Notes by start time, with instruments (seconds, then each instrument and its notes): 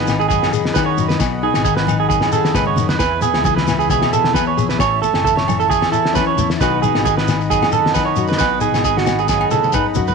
Already playing: fingered electric bass G#1, nylon-string guitar D#3 D#4, clean electric guitar B4, accordion D#5 F#5 B5
0.07 snare, muted conga, low agogo, shekere
0.20 clean electric guitar G#4, shekere
0.28 nylon-string guitar F#2, clean electric guitar G#4, kick, muted conga, shekere
0.43 snare, low agogo
0.51 nylon-string guitar G#4, muted clean electric guitar stroke, shekere
0.65 snare
0.74 nylon-string guitar D#3 D#4, clean electric guitar B4, kick, snare, high conga, low agogo, shekere
0.86 clean electric guitar C#5
0.97 fingered electric bass F#2, nylon-string guitar F#4, shekere
1.08 clean electric guitar B4, snare, shekere
1.19 fingered electric bass B1, nylon-string guitar B2, muted clean electric guitar stroke, kick, snare, low agogo, shekere
1.43 nylon-string guitar D#4, clean electric guitar G#4
1.54 fingered electric bass G#1, snare, low agogo, shekere
1.64 nylon-string guitar D#3, clean electric guitar G#4, kick, shekere
1.77 clean electric guitar B4, snare
1.87 muted conga, high conga, low agogo, shekere
2.00 clean electric guitar G#4
2.09 nylon-string guitar F#2, clean electric guitar G#4, kick, shekere
2.21 snare, low agogo
2.32 nylon-string guitar G#4, clean electric guitar A4, muted conga, shekere
2.45 snare, shekere
2.54 fingered electric bass G#2, nylon-string guitar C#3, clean electric guitar B4, kick, snare, high conga, low agogo, shekere
2.66 clean electric guitar C#5, high conga
2.76 fingered electric bass F#2, nylon-string guitar D#3, low conga, shekere
2.89 clean electric guitar B4, snare, low conga, shekere
2.99 fingered electric bass E2, nylon-string guitar E2, clean electric guitar B4, accordion E5 G#5, kick, snare, muted conga, low agogo, shekere
3.21 nylon-string guitar B3, clean electric guitar G#4, high conga, shekere
3.34 fingered electric bass C#2, snare, low agogo
3.44 nylon-string guitar E3, clean electric guitar G#4, kick, high conga, shekere
3.56 clean electric guitar B4, snare
3.67 snare, low agogo, shekere
3.79 clean electric guitar G#4, shekere
3.90 nylon-string guitar B2, clean electric guitar G#4, kick, snare, shekere
4.02 snare, low agogo
4.12 nylon-string guitar G#4, clean electric guitar A4, muted conga, shekere
4.24 snare
4.34 nylon-string guitar B3, clean electric guitar B4, kick, snare, high conga, low agogo, shekere
4.47 clean electric guitar C#5
4.57 fingered electric bass A#1, nylon-string guitar G#4, shekere
4.69 clean electric guitar B4, snare, shekere
4.78 fingered electric bass A1, nylon-string guitar A2, clean electric guitar C#5, accordion A5 C#6, kick, snare, muted conga, low agogo, shekere
5.01 clean electric guitar A4, muted nylon-string guitar stroke, shekere
5.13 fingered electric bass F#1, snare, low agogo
5.23 nylon-string guitar E3, clean electric guitar A4, kick, shekere
5.37 clean electric guitar C#5, snare
5.48 muted conga, high conga, low agogo, shekere
5.60 clean electric guitar A4, shekere
5.70 nylon-string guitar E2, clean electric guitar G#4, kick, muted conga, shekere
5.82 snare, low agogo
5.92 nylon-string guitar E4, clean electric guitar A4, muted conga, shekere
6.05 snare
6.13 nylon-string guitar E3 C#4, clean electric guitar B4, kick, snare, high conga, low agogo, shekere
6.27 clean electric guitar C#5
6.37 fingered electric bass E2, nylon-string guitar E4, high conga, low conga, shekere
6.50 snare, shekere
6.59 fingered electric bass B1, nylon-string guitar B2 D#3 B3 D#4 F#4, clean electric guitar B4, accordion D#5 F#5 B5, kick, snare, low agogo, shekere
6.82 nylon-string guitar D#4, clean electric guitar G#4, high conga, shekere
6.95 fingered electric bass G#1, snare, low agogo
7.05 nylon-string guitar D#3, clean electric guitar G#4, kick, high conga, shekere
7.17 clean electric guitar B4, snare
7.28 snare, muted conga, low agogo, shekere
7.40 muted clean electric guitar stroke, shekere
7.50 nylon-string guitar F#2, clean electric guitar G#4, kick, snare, muted conga, shekere
7.63 snare, low agogo
7.72 clean electric guitar A4, muted conga, shekere
7.86 snare
7.94 nylon-string guitar D#3 D#4, clean electric guitar B4, kick, snare, high conga, low agogo, shekere
8.05 clean electric guitar C#5
8.16 fingered electric bass F#2, nylon-string guitar F#4, shekere
8.28 clean electric guitar B4, snare, shekere
8.38 fingered electric bass B1, nylon-string guitar B2, clean electric guitar B4, kick, snare, low agogo, shekere
8.61 nylon-string guitar D#4, clean electric guitar G#4, shekere
8.72 fingered electric bass G#1, snare, low agogo, shekere
8.83 nylon-string guitar D#3, clean electric guitar G#4, kick, shekere
8.97 clean electric guitar F#4, snare
9.07 snare, muted conga, high conga, low agogo, shekere
9.18 clean electric guitar G#4, shekere
9.28 nylon-string guitar F#2, clean electric guitar G#4, kick, snare, shekere
9.41 low agogo
9.51 nylon-string guitar G#4, clean electric guitar A4, high tom, muted conga, shekere
9.63 high tom, shekere
9.72 nylon-string guitar D#4, clean electric guitar B4, kick, mid tom, high conga, low agogo, shekere
9.95 fingered electric bass F#2, nylon-string guitar F#4, floor tom, high conga, low conga, shekere
10.07 clean electric guitar B4, floor tom, shekere